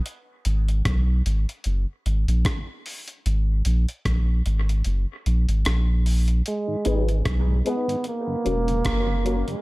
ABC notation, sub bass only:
X:1
M:4/4
L:1/16
Q:"Swing 16ths" 1/4=75
K:G#m
V:1 name="Sub bass" clef=bass
z2 G,,,2 B,,,2 G,,, z F,,, z G,,, A,,, z4 | G,,,2 A,,, z A,,,2 G,,,2 F,,, z A,,, G,,, A,,,4 | z2 G,,,2 B,,,2 z4 E,,,2 F,,,3 z |]